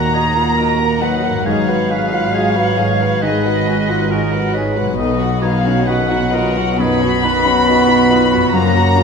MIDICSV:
0, 0, Header, 1, 11, 480
1, 0, Start_track
1, 0, Tempo, 879765
1, 795, Time_signature, 4, 2, 24, 8
1, 2719, Tempo, 906344
1, 3679, Tempo, 870827
1, 4911, End_track
2, 0, Start_track
2, 0, Title_t, "Flute"
2, 0, Program_c, 0, 73
2, 0, Note_on_c, 0, 82, 77
2, 560, Note_on_c, 0, 78, 55
2, 569, Note_off_c, 0, 82, 0
2, 796, Note_on_c, 0, 77, 75
2, 804, Note_off_c, 0, 78, 0
2, 1753, Note_off_c, 0, 77, 0
2, 1756, Note_on_c, 0, 75, 67
2, 2463, Note_off_c, 0, 75, 0
2, 2952, Note_on_c, 0, 77, 57
2, 3184, Note_on_c, 0, 78, 60
2, 3192, Note_off_c, 0, 77, 0
2, 3669, Note_on_c, 0, 83, 87
2, 3677, Note_off_c, 0, 78, 0
2, 4625, Note_off_c, 0, 83, 0
2, 4629, Note_on_c, 0, 82, 90
2, 4911, Note_off_c, 0, 82, 0
2, 4911, End_track
3, 0, Start_track
3, 0, Title_t, "Violin section"
3, 0, Program_c, 1, 48
3, 0, Note_on_c, 1, 82, 86
3, 543, Note_off_c, 1, 82, 0
3, 553, Note_on_c, 1, 78, 73
3, 795, Note_off_c, 1, 78, 0
3, 806, Note_on_c, 1, 77, 83
3, 1746, Note_off_c, 1, 77, 0
3, 1765, Note_on_c, 1, 75, 72
3, 2482, Note_off_c, 1, 75, 0
3, 2948, Note_on_c, 1, 77, 74
3, 3170, Note_off_c, 1, 77, 0
3, 3180, Note_on_c, 1, 78, 70
3, 3675, Note_off_c, 1, 78, 0
3, 3675, Note_on_c, 1, 83, 102
3, 4632, Note_on_c, 1, 82, 102
3, 4636, Note_off_c, 1, 83, 0
3, 4911, Note_off_c, 1, 82, 0
3, 4911, End_track
4, 0, Start_track
4, 0, Title_t, "Violin section"
4, 0, Program_c, 2, 48
4, 0, Note_on_c, 2, 70, 47
4, 0, Note_on_c, 2, 78, 46
4, 74, Note_on_c, 2, 75, 43
4, 75, Note_on_c, 2, 66, 42
4, 78, Note_off_c, 2, 70, 0
4, 79, Note_off_c, 2, 78, 0
4, 193, Note_on_c, 2, 70, 40
4, 193, Note_on_c, 2, 78, 42
4, 195, Note_off_c, 2, 66, 0
4, 195, Note_off_c, 2, 75, 0
4, 313, Note_on_c, 2, 66, 40
4, 314, Note_off_c, 2, 70, 0
4, 314, Note_off_c, 2, 78, 0
4, 315, Note_on_c, 2, 75, 42
4, 425, Note_off_c, 2, 66, 0
4, 426, Note_off_c, 2, 75, 0
4, 434, Note_on_c, 2, 70, 44
4, 434, Note_on_c, 2, 78, 44
4, 553, Note_on_c, 2, 66, 42
4, 554, Note_off_c, 2, 70, 0
4, 554, Note_on_c, 2, 75, 41
4, 555, Note_off_c, 2, 78, 0
4, 671, Note_on_c, 2, 70, 41
4, 674, Note_off_c, 2, 66, 0
4, 675, Note_off_c, 2, 75, 0
4, 675, Note_on_c, 2, 78, 42
4, 793, Note_off_c, 2, 70, 0
4, 793, Note_on_c, 2, 75, 49
4, 796, Note_off_c, 2, 78, 0
4, 798, Note_on_c, 2, 68, 55
4, 906, Note_off_c, 2, 75, 0
4, 909, Note_off_c, 2, 68, 0
4, 915, Note_on_c, 2, 78, 43
4, 916, Note_on_c, 2, 71, 46
4, 1036, Note_off_c, 2, 78, 0
4, 1037, Note_off_c, 2, 71, 0
4, 1038, Note_on_c, 2, 75, 43
4, 1039, Note_on_c, 2, 68, 44
4, 1154, Note_on_c, 2, 71, 45
4, 1158, Note_off_c, 2, 68, 0
4, 1158, Note_off_c, 2, 75, 0
4, 1158, Note_on_c, 2, 78, 50
4, 1275, Note_on_c, 2, 68, 46
4, 1276, Note_off_c, 2, 71, 0
4, 1276, Note_on_c, 2, 75, 48
4, 1278, Note_off_c, 2, 78, 0
4, 1389, Note_off_c, 2, 68, 0
4, 1389, Note_off_c, 2, 75, 0
4, 1394, Note_on_c, 2, 78, 46
4, 1395, Note_on_c, 2, 71, 49
4, 1514, Note_on_c, 2, 68, 49
4, 1514, Note_on_c, 2, 75, 50
4, 1517, Note_off_c, 2, 78, 0
4, 1518, Note_off_c, 2, 71, 0
4, 1637, Note_off_c, 2, 68, 0
4, 1637, Note_off_c, 2, 75, 0
4, 1644, Note_on_c, 2, 78, 49
4, 1648, Note_on_c, 2, 71, 50
4, 1759, Note_on_c, 2, 68, 55
4, 1759, Note_on_c, 2, 75, 47
4, 1762, Note_off_c, 2, 78, 0
4, 1764, Note_off_c, 2, 71, 0
4, 1871, Note_off_c, 2, 68, 0
4, 1871, Note_off_c, 2, 75, 0
4, 1879, Note_on_c, 2, 71, 52
4, 1880, Note_on_c, 2, 78, 51
4, 2000, Note_off_c, 2, 71, 0
4, 2000, Note_off_c, 2, 78, 0
4, 2005, Note_on_c, 2, 68, 50
4, 2008, Note_on_c, 2, 75, 46
4, 2118, Note_on_c, 2, 71, 44
4, 2119, Note_on_c, 2, 78, 43
4, 2122, Note_off_c, 2, 68, 0
4, 2124, Note_off_c, 2, 75, 0
4, 2237, Note_on_c, 2, 75, 46
4, 2238, Note_on_c, 2, 68, 46
4, 2239, Note_off_c, 2, 71, 0
4, 2240, Note_off_c, 2, 78, 0
4, 2350, Note_off_c, 2, 75, 0
4, 2351, Note_off_c, 2, 68, 0
4, 2357, Note_on_c, 2, 71, 47
4, 2357, Note_on_c, 2, 78, 47
4, 2478, Note_off_c, 2, 71, 0
4, 2478, Note_off_c, 2, 78, 0
4, 2478, Note_on_c, 2, 75, 44
4, 2484, Note_on_c, 2, 68, 48
4, 2597, Note_on_c, 2, 71, 47
4, 2598, Note_off_c, 2, 75, 0
4, 2598, Note_on_c, 2, 78, 43
4, 2601, Note_off_c, 2, 68, 0
4, 2708, Note_off_c, 2, 71, 0
4, 2711, Note_on_c, 2, 75, 58
4, 2714, Note_on_c, 2, 71, 56
4, 2718, Note_off_c, 2, 78, 0
4, 2822, Note_off_c, 2, 75, 0
4, 2824, Note_off_c, 2, 71, 0
4, 2831, Note_on_c, 2, 78, 49
4, 2832, Note_on_c, 2, 66, 51
4, 2946, Note_on_c, 2, 75, 49
4, 2949, Note_off_c, 2, 78, 0
4, 2950, Note_off_c, 2, 66, 0
4, 2950, Note_on_c, 2, 71, 50
4, 3057, Note_on_c, 2, 66, 50
4, 3058, Note_on_c, 2, 78, 50
4, 3066, Note_off_c, 2, 75, 0
4, 3068, Note_off_c, 2, 71, 0
4, 3177, Note_on_c, 2, 71, 54
4, 3177, Note_on_c, 2, 75, 49
4, 3182, Note_off_c, 2, 66, 0
4, 3183, Note_off_c, 2, 78, 0
4, 3295, Note_off_c, 2, 71, 0
4, 3295, Note_off_c, 2, 75, 0
4, 3308, Note_on_c, 2, 78, 54
4, 3311, Note_on_c, 2, 66, 51
4, 3427, Note_on_c, 2, 71, 55
4, 3427, Note_on_c, 2, 75, 55
4, 3432, Note_off_c, 2, 78, 0
4, 3434, Note_off_c, 2, 66, 0
4, 3549, Note_on_c, 2, 78, 55
4, 3550, Note_on_c, 2, 66, 57
4, 3554, Note_off_c, 2, 71, 0
4, 3554, Note_off_c, 2, 75, 0
4, 3664, Note_on_c, 2, 71, 55
4, 3664, Note_on_c, 2, 75, 53
4, 3675, Note_off_c, 2, 66, 0
4, 3675, Note_off_c, 2, 78, 0
4, 3786, Note_off_c, 2, 71, 0
4, 3786, Note_off_c, 2, 75, 0
4, 3789, Note_on_c, 2, 78, 55
4, 3791, Note_on_c, 2, 66, 56
4, 3914, Note_on_c, 2, 71, 58
4, 3915, Note_on_c, 2, 75, 56
4, 3917, Note_off_c, 2, 78, 0
4, 3919, Note_off_c, 2, 66, 0
4, 4035, Note_on_c, 2, 78, 53
4, 4039, Note_off_c, 2, 71, 0
4, 4039, Note_on_c, 2, 66, 51
4, 4040, Note_off_c, 2, 75, 0
4, 4159, Note_off_c, 2, 78, 0
4, 4160, Note_off_c, 2, 66, 0
4, 4160, Note_on_c, 2, 75, 51
4, 4161, Note_on_c, 2, 71, 46
4, 4272, Note_off_c, 2, 71, 0
4, 4272, Note_off_c, 2, 75, 0
4, 4282, Note_on_c, 2, 66, 51
4, 4284, Note_on_c, 2, 78, 55
4, 4400, Note_off_c, 2, 66, 0
4, 4401, Note_off_c, 2, 78, 0
4, 4403, Note_on_c, 2, 71, 49
4, 4407, Note_on_c, 2, 75, 49
4, 4521, Note_off_c, 2, 71, 0
4, 4523, Note_off_c, 2, 75, 0
4, 4527, Note_on_c, 2, 66, 48
4, 4527, Note_on_c, 2, 78, 49
4, 4642, Note_off_c, 2, 66, 0
4, 4642, Note_off_c, 2, 78, 0
4, 4642, Note_on_c, 2, 77, 62
4, 4643, Note_on_c, 2, 65, 63
4, 4752, Note_off_c, 2, 65, 0
4, 4752, Note_off_c, 2, 77, 0
4, 4767, Note_on_c, 2, 66, 54
4, 4767, Note_on_c, 2, 78, 54
4, 4882, Note_off_c, 2, 66, 0
4, 4883, Note_off_c, 2, 78, 0
4, 4890, Note_on_c, 2, 65, 54
4, 4890, Note_on_c, 2, 77, 54
4, 4911, Note_off_c, 2, 65, 0
4, 4911, Note_off_c, 2, 77, 0
4, 4911, End_track
5, 0, Start_track
5, 0, Title_t, "Oboe"
5, 0, Program_c, 3, 68
5, 0, Note_on_c, 3, 66, 51
5, 76, Note_on_c, 3, 68, 49
5, 84, Note_off_c, 3, 66, 0
5, 312, Note_on_c, 3, 70, 55
5, 320, Note_off_c, 3, 68, 0
5, 550, Note_off_c, 3, 70, 0
5, 554, Note_on_c, 3, 71, 53
5, 794, Note_on_c, 3, 73, 59
5, 802, Note_off_c, 3, 71, 0
5, 1038, Note_on_c, 3, 71, 62
5, 1046, Note_off_c, 3, 73, 0
5, 1278, Note_on_c, 3, 73, 61
5, 1286, Note_off_c, 3, 71, 0
5, 1756, Note_on_c, 3, 71, 65
5, 1764, Note_off_c, 3, 73, 0
5, 2237, Note_on_c, 3, 70, 63
5, 2245, Note_off_c, 3, 71, 0
5, 2474, Note_on_c, 3, 71, 58
5, 2482, Note_off_c, 3, 70, 0
5, 2643, Note_off_c, 3, 71, 0
5, 2714, Note_on_c, 3, 75, 61
5, 2947, Note_on_c, 3, 73, 66
5, 2955, Note_off_c, 3, 75, 0
5, 3186, Note_on_c, 3, 71, 64
5, 3194, Note_off_c, 3, 73, 0
5, 3433, Note_on_c, 3, 70, 65
5, 3441, Note_off_c, 3, 71, 0
5, 3681, Note_on_c, 3, 68, 60
5, 3689, Note_off_c, 3, 70, 0
5, 3923, Note_on_c, 3, 66, 67
5, 3932, Note_off_c, 3, 68, 0
5, 4911, Note_off_c, 3, 66, 0
5, 4911, End_track
6, 0, Start_track
6, 0, Title_t, "Felt piano"
6, 0, Program_c, 4, 0
6, 0, Control_c, 4, 64, 127
6, 0, Note_on_c, 4, 46, 38
6, 0, Note_on_c, 4, 65, 32
6, 0, Note_on_c, 4, 66, 44
6, 0, Note_on_c, 4, 70, 41
6, 0, Note_on_c, 4, 71, 36
6, 88, Note_off_c, 4, 66, 0
6, 88, Note_on_c, 4, 66, 42
6, 154, Note_off_c, 4, 70, 0
6, 202, Note_off_c, 4, 65, 0
6, 202, Note_on_c, 4, 65, 33
6, 273, Note_off_c, 4, 66, 0
6, 318, Note_off_c, 4, 65, 0
6, 318, Note_on_c, 4, 66, 44
6, 440, Note_on_c, 4, 70, 42
6, 508, Note_off_c, 4, 66, 0
6, 555, Note_off_c, 4, 71, 0
6, 555, Note_on_c, 4, 71, 35
6, 630, Note_off_c, 4, 70, 0
6, 675, Note_off_c, 4, 71, 0
6, 682, Note_on_c, 4, 70, 42
6, 799, Note_off_c, 4, 70, 0
6, 800, Note_on_c, 4, 44, 52
6, 805, Control_c, 4, 64, 0
6, 809, Note_off_c, 4, 46, 0
6, 880, Control_c, 4, 64, 127
6, 919, Note_on_c, 4, 71, 41
6, 1034, Note_on_c, 4, 66, 44
6, 1111, Note_off_c, 4, 71, 0
6, 1158, Note_on_c, 4, 65, 38
6, 1228, Note_off_c, 4, 66, 0
6, 1279, Note_off_c, 4, 65, 0
6, 1281, Note_on_c, 4, 66, 49
6, 1395, Note_on_c, 4, 71, 44
6, 1473, Note_off_c, 4, 66, 0
6, 1519, Note_on_c, 4, 73, 36
6, 1590, Note_off_c, 4, 71, 0
6, 1640, Note_off_c, 4, 73, 0
6, 1641, Note_on_c, 4, 71, 41
6, 1740, Note_off_c, 4, 44, 0
6, 1763, Note_on_c, 4, 51, 41
6, 1833, Note_off_c, 4, 71, 0
6, 1880, Note_on_c, 4, 71, 46
6, 1953, Note_off_c, 4, 51, 0
6, 2000, Note_on_c, 4, 66, 45
6, 2072, Note_off_c, 4, 71, 0
6, 2125, Note_on_c, 4, 65, 39
6, 2192, Note_off_c, 4, 66, 0
6, 2242, Note_off_c, 4, 65, 0
6, 2244, Note_on_c, 4, 66, 47
6, 2362, Note_on_c, 4, 71, 49
6, 2434, Note_off_c, 4, 66, 0
6, 2480, Note_on_c, 4, 73, 38
6, 2552, Note_off_c, 4, 71, 0
6, 2599, Note_off_c, 4, 73, 0
6, 2602, Note_on_c, 4, 71, 46
6, 2719, Note_off_c, 4, 71, 0
6, 2721, Note_on_c, 4, 35, 53
6, 2727, Control_c, 4, 64, 0
6, 2828, Control_c, 4, 64, 127
6, 2844, Note_on_c, 4, 66, 42
6, 2952, Note_on_c, 4, 63, 51
6, 3026, Note_off_c, 4, 66, 0
6, 3075, Note_on_c, 4, 61, 41
6, 3141, Note_off_c, 4, 63, 0
6, 3191, Note_off_c, 4, 61, 0
6, 3192, Note_on_c, 4, 66, 55
6, 3313, Note_on_c, 4, 63, 50
6, 3385, Note_off_c, 4, 66, 0
6, 3435, Note_on_c, 4, 65, 42
6, 3510, Note_off_c, 4, 63, 0
6, 3558, Note_off_c, 4, 65, 0
6, 3558, Note_on_c, 4, 66, 50
6, 3659, Note_off_c, 4, 35, 0
6, 3677, Note_on_c, 4, 42, 51
6, 3754, Note_off_c, 4, 66, 0
6, 3798, Note_on_c, 4, 66, 47
6, 3875, Note_off_c, 4, 42, 0
6, 3924, Note_on_c, 4, 63, 48
6, 3994, Note_off_c, 4, 66, 0
6, 4041, Note_on_c, 4, 61, 40
6, 4115, Note_off_c, 4, 63, 0
6, 4162, Note_off_c, 4, 61, 0
6, 4164, Note_on_c, 4, 66, 54
6, 4279, Note_on_c, 4, 63, 56
6, 4353, Note_off_c, 4, 66, 0
6, 4400, Note_on_c, 4, 65, 42
6, 4470, Note_off_c, 4, 63, 0
6, 4516, Note_on_c, 4, 66, 51
6, 4519, Note_off_c, 4, 65, 0
6, 4637, Note_off_c, 4, 66, 0
6, 4638, Note_on_c, 4, 42, 65
6, 4648, Control_c, 4, 64, 0
6, 4731, Control_c, 4, 64, 127
6, 4753, Note_on_c, 4, 66, 45
6, 4872, Note_on_c, 4, 61, 52
6, 4911, Note_off_c, 4, 42, 0
6, 4911, Note_off_c, 4, 61, 0
6, 4911, Note_off_c, 4, 66, 0
6, 4911, End_track
7, 0, Start_track
7, 0, Title_t, "Viola section"
7, 0, Program_c, 5, 48
7, 0, Note_on_c, 5, 58, 44
7, 0, Note_on_c, 5, 66, 43
7, 70, Note_on_c, 5, 63, 41
7, 72, Note_on_c, 5, 54, 41
7, 76, Note_off_c, 5, 58, 0
7, 76, Note_off_c, 5, 66, 0
7, 185, Note_on_c, 5, 66, 41
7, 186, Note_on_c, 5, 58, 40
7, 193, Note_off_c, 5, 63, 0
7, 194, Note_off_c, 5, 54, 0
7, 307, Note_on_c, 5, 54, 42
7, 310, Note_off_c, 5, 58, 0
7, 310, Note_off_c, 5, 66, 0
7, 312, Note_on_c, 5, 63, 45
7, 422, Note_off_c, 5, 54, 0
7, 425, Note_off_c, 5, 63, 0
7, 428, Note_on_c, 5, 58, 43
7, 431, Note_on_c, 5, 66, 43
7, 548, Note_on_c, 5, 54, 41
7, 548, Note_on_c, 5, 63, 46
7, 551, Note_off_c, 5, 58, 0
7, 553, Note_off_c, 5, 66, 0
7, 667, Note_on_c, 5, 58, 44
7, 667, Note_on_c, 5, 66, 42
7, 672, Note_off_c, 5, 54, 0
7, 672, Note_off_c, 5, 63, 0
7, 790, Note_on_c, 5, 63, 52
7, 792, Note_off_c, 5, 58, 0
7, 792, Note_off_c, 5, 66, 0
7, 792, Note_on_c, 5, 56, 50
7, 905, Note_off_c, 5, 63, 0
7, 906, Note_off_c, 5, 56, 0
7, 916, Note_on_c, 5, 54, 42
7, 916, Note_on_c, 5, 66, 43
7, 1029, Note_on_c, 5, 56, 43
7, 1029, Note_on_c, 5, 63, 39
7, 1036, Note_off_c, 5, 66, 0
7, 1037, Note_off_c, 5, 54, 0
7, 1154, Note_off_c, 5, 56, 0
7, 1154, Note_off_c, 5, 63, 0
7, 1155, Note_on_c, 5, 54, 47
7, 1155, Note_on_c, 5, 66, 43
7, 1272, Note_on_c, 5, 56, 49
7, 1273, Note_on_c, 5, 63, 43
7, 1277, Note_off_c, 5, 54, 0
7, 1277, Note_off_c, 5, 66, 0
7, 1387, Note_off_c, 5, 56, 0
7, 1388, Note_off_c, 5, 63, 0
7, 1401, Note_on_c, 5, 54, 43
7, 1403, Note_on_c, 5, 66, 42
7, 1519, Note_on_c, 5, 56, 46
7, 1519, Note_on_c, 5, 63, 48
7, 1521, Note_off_c, 5, 54, 0
7, 1521, Note_off_c, 5, 66, 0
7, 1637, Note_on_c, 5, 54, 46
7, 1639, Note_on_c, 5, 66, 44
7, 1640, Note_off_c, 5, 56, 0
7, 1640, Note_off_c, 5, 63, 0
7, 1759, Note_off_c, 5, 54, 0
7, 1759, Note_off_c, 5, 66, 0
7, 1759, Note_on_c, 5, 56, 53
7, 1761, Note_on_c, 5, 63, 46
7, 1871, Note_off_c, 5, 56, 0
7, 1872, Note_off_c, 5, 63, 0
7, 1882, Note_on_c, 5, 66, 47
7, 1884, Note_on_c, 5, 54, 51
7, 1998, Note_on_c, 5, 56, 45
7, 1998, Note_on_c, 5, 63, 48
7, 2001, Note_off_c, 5, 66, 0
7, 2002, Note_off_c, 5, 54, 0
7, 2119, Note_off_c, 5, 56, 0
7, 2119, Note_off_c, 5, 63, 0
7, 2125, Note_on_c, 5, 54, 47
7, 2125, Note_on_c, 5, 66, 49
7, 2241, Note_on_c, 5, 63, 48
7, 2242, Note_off_c, 5, 54, 0
7, 2242, Note_off_c, 5, 66, 0
7, 2243, Note_on_c, 5, 56, 47
7, 2352, Note_off_c, 5, 63, 0
7, 2353, Note_off_c, 5, 56, 0
7, 2361, Note_on_c, 5, 54, 47
7, 2365, Note_on_c, 5, 66, 49
7, 2479, Note_on_c, 5, 56, 50
7, 2480, Note_off_c, 5, 54, 0
7, 2480, Note_on_c, 5, 63, 48
7, 2482, Note_off_c, 5, 66, 0
7, 2599, Note_off_c, 5, 56, 0
7, 2599, Note_off_c, 5, 63, 0
7, 2599, Note_on_c, 5, 54, 46
7, 2602, Note_on_c, 5, 66, 51
7, 2718, Note_off_c, 5, 54, 0
7, 2719, Note_off_c, 5, 66, 0
7, 2721, Note_on_c, 5, 51, 52
7, 2722, Note_on_c, 5, 63, 59
7, 2827, Note_off_c, 5, 51, 0
7, 2828, Note_off_c, 5, 63, 0
7, 2830, Note_on_c, 5, 59, 50
7, 2833, Note_on_c, 5, 54, 46
7, 2949, Note_off_c, 5, 59, 0
7, 2950, Note_off_c, 5, 54, 0
7, 2951, Note_on_c, 5, 51, 48
7, 2953, Note_on_c, 5, 63, 46
7, 3064, Note_on_c, 5, 54, 55
7, 3065, Note_on_c, 5, 59, 50
7, 3069, Note_off_c, 5, 51, 0
7, 3070, Note_off_c, 5, 63, 0
7, 3184, Note_on_c, 5, 51, 50
7, 3186, Note_off_c, 5, 54, 0
7, 3186, Note_off_c, 5, 59, 0
7, 3186, Note_on_c, 5, 63, 48
7, 3299, Note_off_c, 5, 51, 0
7, 3300, Note_off_c, 5, 63, 0
7, 3309, Note_on_c, 5, 54, 50
7, 3311, Note_on_c, 5, 59, 47
7, 3431, Note_on_c, 5, 51, 52
7, 3433, Note_off_c, 5, 54, 0
7, 3433, Note_on_c, 5, 63, 47
7, 3434, Note_off_c, 5, 59, 0
7, 3556, Note_off_c, 5, 51, 0
7, 3557, Note_off_c, 5, 63, 0
7, 3557, Note_on_c, 5, 54, 48
7, 3558, Note_on_c, 5, 59, 52
7, 3679, Note_off_c, 5, 54, 0
7, 3679, Note_off_c, 5, 59, 0
7, 3682, Note_on_c, 5, 63, 54
7, 3683, Note_on_c, 5, 51, 51
7, 3796, Note_off_c, 5, 63, 0
7, 3797, Note_off_c, 5, 51, 0
7, 3805, Note_on_c, 5, 54, 51
7, 3809, Note_on_c, 5, 59, 53
7, 3925, Note_on_c, 5, 63, 54
7, 3926, Note_off_c, 5, 54, 0
7, 3927, Note_off_c, 5, 59, 0
7, 3927, Note_on_c, 5, 51, 52
7, 4041, Note_on_c, 5, 54, 55
7, 4041, Note_on_c, 5, 59, 52
7, 4045, Note_off_c, 5, 63, 0
7, 4046, Note_off_c, 5, 51, 0
7, 4160, Note_on_c, 5, 51, 52
7, 4160, Note_on_c, 5, 63, 53
7, 4161, Note_off_c, 5, 59, 0
7, 4162, Note_off_c, 5, 54, 0
7, 4271, Note_off_c, 5, 51, 0
7, 4272, Note_off_c, 5, 63, 0
7, 4280, Note_on_c, 5, 59, 52
7, 4281, Note_on_c, 5, 54, 48
7, 4400, Note_off_c, 5, 54, 0
7, 4400, Note_off_c, 5, 59, 0
7, 4404, Note_on_c, 5, 63, 54
7, 4405, Note_on_c, 5, 51, 48
7, 4518, Note_on_c, 5, 54, 51
7, 4519, Note_on_c, 5, 59, 53
7, 4521, Note_off_c, 5, 51, 0
7, 4521, Note_off_c, 5, 63, 0
7, 4638, Note_off_c, 5, 54, 0
7, 4638, Note_off_c, 5, 59, 0
7, 4641, Note_on_c, 5, 61, 58
7, 4642, Note_on_c, 5, 53, 60
7, 4751, Note_off_c, 5, 61, 0
7, 4752, Note_off_c, 5, 53, 0
7, 4758, Note_on_c, 5, 58, 49
7, 4760, Note_on_c, 5, 54, 52
7, 4874, Note_on_c, 5, 53, 49
7, 4875, Note_on_c, 5, 61, 56
7, 4878, Note_off_c, 5, 58, 0
7, 4879, Note_off_c, 5, 54, 0
7, 4911, Note_off_c, 5, 53, 0
7, 4911, Note_off_c, 5, 61, 0
7, 4911, End_track
8, 0, Start_track
8, 0, Title_t, "French horn section"
8, 0, Program_c, 6, 60
8, 0, Note_on_c, 6, 58, 80
8, 554, Note_on_c, 6, 54, 61
8, 556, Note_off_c, 6, 58, 0
8, 779, Note_off_c, 6, 54, 0
8, 786, Note_on_c, 6, 54, 75
8, 1755, Note_off_c, 6, 54, 0
8, 1757, Note_on_c, 6, 51, 64
8, 2464, Note_off_c, 6, 51, 0
8, 2951, Note_on_c, 6, 54, 59
8, 3171, Note_off_c, 6, 54, 0
8, 3204, Note_on_c, 6, 54, 65
8, 3678, Note_on_c, 6, 59, 89
8, 3687, Note_off_c, 6, 54, 0
8, 4638, Note_off_c, 6, 59, 0
8, 4644, Note_on_c, 6, 58, 90
8, 4911, Note_off_c, 6, 58, 0
8, 4911, End_track
9, 0, Start_track
9, 0, Title_t, "Harp"
9, 0, Program_c, 7, 46
9, 0, Note_on_c, 7, 51, 40
9, 0, Note_on_c, 7, 54, 34
9, 0, Note_on_c, 7, 63, 35
9, 701, Note_on_c, 7, 44, 45
9, 720, Note_off_c, 7, 54, 0
9, 727, Note_on_c, 7, 54, 35
9, 742, Note_off_c, 7, 63, 0
9, 748, Note_on_c, 7, 63, 35
9, 763, Note_off_c, 7, 51, 0
9, 775, Note_on_c, 7, 59, 39
9, 2623, Note_on_c, 7, 47, 48
9, 2640, Note_off_c, 7, 54, 0
9, 2646, Note_on_c, 7, 54, 42
9, 2667, Note_off_c, 7, 63, 0
9, 2673, Note_on_c, 7, 63, 43
9, 2690, Note_off_c, 7, 44, 0
9, 2694, Note_on_c, 7, 66, 43
9, 2897, Note_off_c, 7, 59, 0
9, 4538, Note_on_c, 7, 42, 55
9, 4557, Note_off_c, 7, 54, 0
9, 4563, Note_on_c, 7, 54, 46
9, 4588, Note_on_c, 7, 61, 44
9, 4605, Note_off_c, 7, 66, 0
9, 4609, Note_off_c, 7, 47, 0
9, 4612, Note_on_c, 7, 66, 45
9, 4635, Note_off_c, 7, 63, 0
9, 4911, Note_off_c, 7, 42, 0
9, 4911, Note_off_c, 7, 54, 0
9, 4911, Note_off_c, 7, 61, 0
9, 4911, Note_off_c, 7, 66, 0
9, 4911, End_track
10, 0, Start_track
10, 0, Title_t, "Cello section"
10, 0, Program_c, 8, 48
10, 0, Note_on_c, 8, 39, 53
10, 773, Note_off_c, 8, 39, 0
10, 793, Note_on_c, 8, 44, 60
10, 2695, Note_off_c, 8, 44, 0
10, 2718, Note_on_c, 8, 47, 64
10, 4616, Note_off_c, 8, 47, 0
10, 4631, Note_on_c, 8, 42, 69
10, 4911, Note_off_c, 8, 42, 0
10, 4911, End_track
11, 0, Start_track
11, 0, Title_t, "Double bass section"
11, 0, Program_c, 10, 48
11, 0, Note_on_c, 10, 39, 58
11, 774, Note_off_c, 10, 39, 0
11, 794, Note_on_c, 10, 32, 58
11, 2695, Note_off_c, 10, 32, 0
11, 2719, Note_on_c, 10, 35, 64
11, 4617, Note_off_c, 10, 35, 0
11, 4639, Note_on_c, 10, 30, 68
11, 4911, Note_off_c, 10, 30, 0
11, 4911, End_track
0, 0, End_of_file